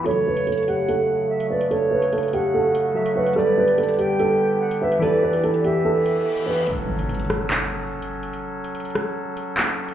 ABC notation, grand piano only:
X:1
M:4/4
L:1/8
Q:1/4=145
K:F#phr
V:1 name="Grand piano"
A B A G A3 B | A B A G A3 B | A B A G A3 B | A B A G A3 B |
z8 | z8 |]